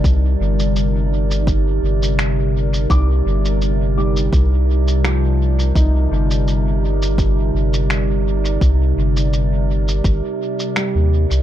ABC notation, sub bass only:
X:1
M:4/4
L:1/16
Q:"Swing 16ths" 1/4=84
K:Cm
V:1 name="Sub bass" clef=bass
C,,2 G,,,8 G,,,6 | C,,2 G,,,6 C,,8 | C,,2 G,,,8 G,,,6 | C,,2 G,,,6 G,,, z4 E,,2 C,, |]